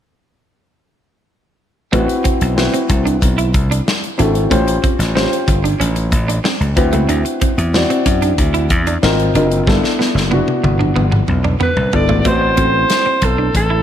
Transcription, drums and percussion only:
1.93 kick medium
1.93 closed hi-hat medium
2.09 closed hi-hat medium
2.25 kick medium
2.25 closed hi-hat medium
2.41 closed hi-hat soft
2.58 snare loud
2.74 closed hi-hat soft
2.90 kick medium
2.90 closed hi-hat medium
3.07 closed hi-hat soft
3.22 kick medium
3.22 closed hi-hat medium
3.38 closed hi-hat soft
3.54 kick medium
3.54 closed hi-hat medium
3.72 closed hi-hat medium
3.88 snare loud
4.04 closed hi-hat soft
4.19 closed hi-hat medium
4.35 closed hi-hat soft
4.51 kick medium
4.51 closed hi-hat medium
4.68 closed hi-hat medium
4.84 kick medium
4.84 closed hi-hat medium
5.00 snare soft
5.00 closed hi-hat soft
5.17 snare loud
5.33 closed hi-hat medium
5.48 kick medium
5.48 closed hi-hat medium
5.65 closed hi-hat medium
5.81 closed hi-hat medium
5.96 closed hi-hat soft
6.12 kick medium
6.12 closed hi-hat medium
6.29 closed hi-hat medium
6.45 snare loud
6.61 closed hi-hat soft
6.77 kick loud
6.77 closed hi-hat medium
6.93 closed hi-hat soft
7.09 closed hi-hat medium
7.26 closed hi-hat medium
7.41 kick medium
7.41 closed hi-hat medium
7.58 closed hi-hat medium
7.74 snare loud
7.90 closed hi-hat soft
8.06 kick medium
8.06 closed hi-hat medium
8.22 closed hi-hat soft
8.38 kick medium
8.38 closed hi-hat medium
8.54 closed hi-hat soft
8.70 kick medium
8.70 closed hi-hat medium
8.87 closed hi-hat medium
9.03 snare loud
9.20 closed hi-hat soft
9.35 closed hi-hat medium
9.51 closed hi-hat soft
9.67 kick medium
9.67 snare soft
9.84 snare soft
10.01 snare medium
10.17 snare medium
10.32 high tom medium
10.48 high tom medium
10.64 high tom medium
10.81 mid tom medium
10.96 mid tom medium
11.12 mid tom medium
11.28 mid tom medium
11.44 mid tom medium
11.61 mid tom medium
11.77 floor tom medium
11.93 floor tom medium
12.09 floor tom medium
12.25 kick medium
12.25 closed hi-hat medium
12.57 kick medium
12.57 closed hi-hat medium
12.90 snare loud
12.90 closed hi-hat medium
13.22 kick medium
13.22 closed hi-hat medium
13.55 kick medium
13.55 closed hi-hat medium

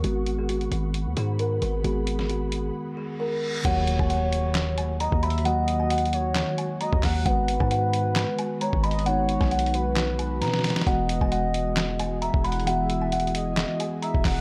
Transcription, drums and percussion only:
0.04 closed hi-hat medium
0.27 closed hi-hat medium
0.49 closed hi-hat medium
0.61 closed hi-hat soft
0.72 closed hi-hat medium
0.94 closed hi-hat medium
1.17 closed hi-hat medium
1.39 closed hi-hat medium
1.62 closed hi-hat medium
1.84 closed hi-hat medium
2.07 closed hi-hat medium
2.19 snare medium
2.30 closed hi-hat medium
2.52 closed hi-hat medium
3.65 kick loud
3.65 closed hi-hat medium
3.65 crash loud
3.87 closed hi-hat medium
3.99 kick medium
4.10 closed hi-hat medium
4.33 closed hi-hat medium
4.55 snare loud
4.55 clap loud
4.55 closed hi-hat medium
4.78 closed hi-hat medium
5.00 closed hi-hat medium
5.12 kick loud
5.23 closed hi-hat medium
5.30 closed hi-hat medium
5.38 closed hi-hat soft
5.45 closed hi-hat medium
5.68 closed hi-hat medium
5.90 closed hi-hat medium
5.98 closed hi-hat medium
6.05 closed hi-hat soft
6.13 closed hi-hat medium
6.35 snare loud
6.35 clap loud
6.35 closed hi-hat medium
6.58 closed hi-hat medium
6.81 closed hi-hat medium
6.93 kick loud
7.03 kick medium
7.03 snare medium
7.03 clap medium
7.03 open hi-hat medium
7.26 kick loud
7.26 closed hi-hat medium
7.48 closed hi-hat medium
7.60 kick medium
7.71 closed hi-hat medium
7.93 closed hi-hat medium
8.16 snare loud
8.16 clap loud
8.16 closed hi-hat medium
8.39 closed hi-hat medium
8.61 closed hi-hat medium
8.73 kick loud
8.84 closed hi-hat medium
8.91 closed hi-hat medium
8.99 closed hi-hat soft
9.06 closed hi-hat medium
9.29 closed hi-hat medium
9.41 kick medium
9.41 snare medium
9.51 closed hi-hat medium
9.59 closed hi-hat medium
9.66 closed hi-hat soft
9.74 closed hi-hat medium
9.96 snare loud
9.96 clap loud
9.96 closed hi-hat medium
10.19 closed hi-hat medium
10.42 snare medium
10.42 closed hi-hat medium
10.48 snare medium
10.54 snare medium
10.59 snare medium
10.64 snare medium
10.64 closed hi-hat soft
10.64 open hi-hat medium
10.70 snare medium
10.70 closed hi-hat medium
10.76 snare loud
10.76 closed hi-hat medium
10.81 snare loud
10.81 closed hi-hat medium
10.87 kick loud
10.87 closed hi-hat medium
11.09 closed hi-hat medium
11.21 kick medium
11.32 closed hi-hat medium
11.54 closed hi-hat medium
11.77 snare loud
11.77 clap loud
11.77 closed hi-hat medium
11.99 closed hi-hat medium
12.22 closed hi-hat medium
12.34 kick loud
12.45 closed hi-hat medium
12.52 closed hi-hat medium
12.60 closed hi-hat soft
12.67 closed hi-hat medium
12.90 closed hi-hat medium
13.12 closed hi-hat medium
13.20 closed hi-hat medium
13.27 closed hi-hat soft
13.35 closed hi-hat loud
13.57 snare loud
13.57 clap loud
13.57 closed hi-hat medium
13.80 closed hi-hat medium
14.03 closed hi-hat medium
14.14 kick loud
14.25 kick medium
14.25 snare medium
14.25 clap medium
14.25 open hi-hat medium

